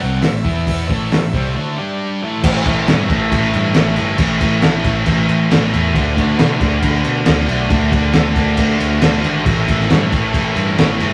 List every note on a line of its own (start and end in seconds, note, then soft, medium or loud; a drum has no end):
0.00 0.22 C2 medium
0.00 0.21 C3 loud
0.00 0.22 G3 loud
0.00 0.23 C4 loud
0.00 0.19 E4 medium
0.00 0.20 A4 medium
0.00 0.21 C#5 medium
0.00 0.25 F#5 loud
0.21 0.44 A1 medium
0.21 0.40 A2 medium
0.21 0.40 E3 medium
0.21 0.40 E4 medium
0.21 0.42 A4 medium
0.21 0.43 C#5 medium
0.21 2.00 E5 medium
0.21 snare loud
0.21 open hi-hat medium
0.41 0.86 E2 medium
0.41 0.88 E3 medium
0.41 0.88 B3 loud
0.41 0.84 E4 medium
0.41 0.89 E4 medium
0.41 0.84 B4 medium
0.41 0.85 E5 medium
0.41 kick medium
0.67 kick loud
0.67 open hi-hat medium
0.85 1.10 A2 medium
0.85 1.10 E3 loud
0.85 1.28 E4 loud
0.85 1.29 A4 medium
0.85 1.29 C#5 loud
0.85 kick loud
0.89 1.10 A1 medium
0.89 1.11 A3 loud
1.11 1.32 A1 medium
1.11 1.29 A2 medium
1.11 1.29 E3 medium
1.11 snare loud
1.11 open hi-hat medium
1.31 1.54 C2 medium
1.31 1.54 C3 medium
1.31 1.55 G3 medium
1.31 1.56 C4 loud
1.31 1.53 E4 medium
1.31 1.53 A4 medium
1.31 1.54 C#5 medium
1.31 kick loud
1.54 1.77 D3 medium
1.54 1.77 A3 medium
1.54 1.77 D4 loud
1.54 1.75 E4 loud
1.54 1.76 A4 loud
1.54 1.76 C#5 loud
1.76 2.21 G3 medium
1.76 2.18 D4 medium
1.76 2.22 D4 medium
1.76 2.18 G4 medium
1.76 2.22 G4 loud
1.76 2.19 D5 loud
2.21 2.41 A2 medium
2.21 2.43 E3 medium
2.21 2.44 A3 loud
2.21 2.42 E4 medium
2.21 2.43 A4 medium
2.21 2.43 C#5 loud
2.42 2.62 A1 loud
2.42 2.87 A2 medium
2.42 2.67 E3 loud
2.42 2.64 A3 loud
2.42 2.63 E4 loud
2.42 2.65 A4 loud
2.42 2.65 C#5 loud
2.42 kick loud
2.42 crash loud
2.42 crash medium
2.65 2.84 A1 medium
2.65 2.88 E3 medium
2.65 2.90 A3 medium
2.65 2.86 E4 medium
2.65 2.86 A4 medium
2.65 2.87 C#5 loud
2.65 kick loud
2.65 crash medium
2.87 3.06 G2 medium
2.87 3.74 A2 loud
2.87 3.12 E3 medium
2.87 3.09 A3 loud
2.87 3.07 E4 medium
2.87 3.09 A4 medium
2.87 3.10 C#5 medium
2.87 snare loud
2.87 crash medium
3.09 3.28 A1 loud
3.09 3.77 A3 medium
3.09 3.28 E4 medium
3.09 3.28 A4 medium
3.09 3.31 E5 loud
3.09 kick medium
3.09 crash medium
3.13 3.74 E3 medium
3.29 3.50 A1 loud
3.29 3.51 E4 loud
3.29 3.51 A4 loud
3.29 3.51 C#5 loud
3.29 kick medium
3.29 crash medium
3.52 3.72 G2 loud
3.52 3.72 E4 medium
3.52 3.73 A4 medium
3.52 3.74 C#5 loud
3.52 crash medium
3.73 3.94 A1 medium
3.73 4.16 A2 medium
3.73 3.98 E3 medium
3.73 3.95 E4 medium
3.73 3.96 A4 loud
3.73 3.97 C#5 loud
3.73 snare loud
3.73 crash medium
3.77 3.96 A3 loud
3.96 4.17 G1 medium
3.96 4.17 E3 medium
3.96 4.20 A3 medium
3.96 4.18 E4 medium
3.96 4.18 A4 medium
3.96 crash medium
4.00 4.19 C#5 medium
4.17 4.37 A1 loud
4.17 4.59 A2 medium
4.17 4.41 E3 loud
4.17 4.38 A3 loud
4.17 4.40 E4 loud
4.17 4.41 A4 loud
4.17 kick loud
4.17 crash medium
4.22 4.41 C#5 loud
4.39 4.59 A1 medium
4.39 4.61 E3 medium
4.39 4.64 A3 medium
4.39 4.62 E4 medium
4.39 kick medium
4.39 crash medium
4.43 4.63 A4 medium
4.43 4.63 C#5 loud
4.60 5.06 A2 loud
4.60 4.86 E3 loud
4.60 4.83 A3 loud
4.60 4.84 E4 medium
4.60 snare loud
4.60 crash medium
4.65 4.82 A1 medium
4.65 4.84 A4 medium
4.65 4.85 C#5 medium
4.84 5.03 A1 loud
4.84 5.51 E3 medium
4.84 5.52 A3 medium
4.84 5.05 E4 medium
4.84 5.05 A4 medium
4.84 5.06 C#5 loud
4.84 kick medium
4.84 crash medium
5.06 5.25 A1 loud
5.06 5.27 E4 loud
5.06 5.27 A4 loud
5.06 5.28 C#5 loud
5.06 kick medium
5.06 crash medium
5.29 5.47 A1 medium
5.29 5.48 E4 medium
5.29 5.48 A4 medium
5.29 5.50 C#5 loud
5.29 crash medium
5.49 5.69 A1 medium
5.49 5.93 A2 medium
5.49 5.74 E3 medium
5.49 5.72 A3 loud
5.49 5.70 E4 loud
5.49 5.71 A4 medium
5.49 5.72 C#5 loud
5.49 snare loud
5.49 crash medium
5.71 5.96 E2 medium
5.71 5.96 A3 medium
5.71 5.93 E4 medium
5.71 5.93 A4 medium
5.71 5.93 C#5 loud
5.71 crash medium
5.76 5.95 E3 medium
5.93 6.13 D2 loud
5.93 6.37 D3 medium
5.93 6.19 A3 loud
5.93 6.15 D4 loud
5.93 6.13 F#4 loud
5.93 6.14 A4 loud
5.93 6.16 D5 loud
5.93 kick loud
5.93 crash medium
6.14 6.35 D2 medium
6.14 6.40 D4 medium
6.14 6.35 F#4 medium
6.14 6.35 A4 medium
6.14 6.37 D5 loud
6.14 kick medium
6.14 crash medium
6.19 6.39 A3 medium
6.36 6.57 B2 loud
6.36 7.25 D3 medium
6.36 6.62 A3 loud
6.36 6.55 F#4 medium
6.36 6.57 A4 medium
6.36 6.59 B4 medium
6.36 snare loud
6.36 crash medium
6.41 6.59 D4 loud
6.56 7.28 D4 medium
6.56 6.78 F#4 medium
6.56 6.80 A4 medium
6.56 6.80 D5 loud
6.61 6.79 D2 medium
6.61 7.26 A3 medium
6.61 kick loud
6.61 crash medium
6.79 7.01 D2 loud
6.79 7.00 F#4 loud
6.79 7.02 A4 loud
6.79 7.02 B4 loud
6.79 kick medium
6.79 crash medium
7.01 7.23 F#4 medium
7.01 7.24 A4 medium
7.01 7.24 D5 loud
7.01 crash medium
7.05 7.23 B2 medium
7.26 7.44 D2 loud
7.26 7.68 D3 medium
7.26 7.50 A3 medium
7.26 7.46 D4 medium
7.26 7.44 F#4 medium
7.26 7.46 A4 medium
7.26 7.47 D5 loud
7.26 snare loud
7.26 crash medium
7.45 7.66 B1 medium
7.45 7.71 D4 medium
7.45 7.66 F#4 medium
7.45 7.67 A4 medium
7.45 7.68 D5 medium
7.45 crash medium
7.50 7.71 A3 medium
7.67 7.88 D2 loud
7.67 8.12 D3 medium
7.67 7.94 A3 medium
7.67 7.88 F#4 loud
7.67 7.89 A4 loud
7.67 7.90 D5 loud
7.67 kick loud
7.67 crash medium
7.73 7.90 D4 loud
7.90 8.10 D2 medium
7.90 8.15 D4 medium
7.90 8.10 F#4 loud
7.90 8.12 A4 medium
7.90 8.12 D5 medium
7.90 kick loud
7.90 crash medium
7.94 8.14 A3 medium
8.11 8.32 D2 loud
8.11 8.57 D3 medium
8.11 8.37 A3 loud
8.11 8.31 F#4 medium
8.11 8.32 A4 medium
8.11 8.33 D5 medium
8.11 snare loud
8.11 crash medium
8.16 8.33 D4 loud
8.33 8.54 D2 loud
8.33 9.03 D4 medium
8.33 8.53 F#4 medium
8.33 8.55 A4 medium
8.33 8.55 D5 loud
8.33 kick medium
8.33 crash medium
8.38 9.02 A3 medium
8.54 8.75 F#4 loud
8.54 8.76 A4 medium
8.54 8.78 D5 loud
8.54 kick medium
8.54 crash medium
8.58 8.76 D2 loud
8.76 8.98 D2 medium
8.76 8.98 F#4 loud
8.76 8.99 A4 medium
8.76 8.99 C#5 loud
8.80 crash medium
8.99 9.20 D2 medium
8.99 9.44 D3 medium
8.99 9.25 A3 medium
8.99 9.21 F#4 medium
8.99 9.22 A4 medium
8.99 9.22 D5 loud
8.99 snare loud
8.99 crash medium
9.04 9.21 D4 loud
9.22 9.42 G#1 medium
9.22 9.46 A3 medium
9.22 9.44 D4 medium
9.22 9.43 F#4 medium
9.22 9.42 A4 medium
9.22 9.44 D5 medium
9.22 crash medium
9.43 9.64 A1 loud
9.43 9.89 A2 medium
9.43 9.70 E3 medium
9.43 9.65 E4 loud
9.43 9.65 A4 loud
9.43 9.65 C#5 loud
9.43 kick loud
9.43 crash medium
9.49 9.67 A3 loud
9.66 9.86 A1 loud
9.66 9.93 A3 medium
9.66 9.87 E4 medium
9.66 9.88 A4 medium
9.66 9.88 E5 loud
9.66 kick medium
9.66 crash medium
9.71 9.91 E3 medium
9.80 snare soft
9.89 10.08 G2 medium
9.89 10.77 A2 loud
9.89 10.14 E3 medium
9.89 10.10 A3 loud
9.89 10.10 E4 medium
9.89 10.11 A4 medium
9.89 10.11 C#5 medium
9.89 snare loud
9.89 crash medium
10.11 10.30 A1 loud
10.11 10.78 E3 medium
10.11 10.80 A3 medium
10.11 10.32 E4 medium
10.11 10.33 A4 medium
10.11 10.33 C#5 medium
10.11 kick medium
10.11 crash medium
10.34 10.52 A1 loud
10.34 10.54 E4 loud
10.34 10.55 A4 loud
10.34 10.56 C#5 loud
10.34 kick medium
10.34 crash medium
10.56 10.74 G2 medium
10.56 10.77 E4 medium
10.56 10.78 A4 medium
10.56 10.78 C#5 loud
10.56 crash medium
10.77 10.97 A1 medium
10.77 11.13 A2 medium
10.77 11.02 E3 medium
10.77 10.99 A3 medium
10.77 10.99 E4 loud
10.77 10.99 A4 medium
10.77 11.00 C#5 loud
10.77 snare loud
10.77 crash medium
10.99 11.13 G1 medium
10.99 11.13 E3 medium
10.99 11.13 A3 medium
10.99 11.13 E4 medium
10.99 11.13 A4 medium
10.99 11.13 C#5 medium
10.99 crash medium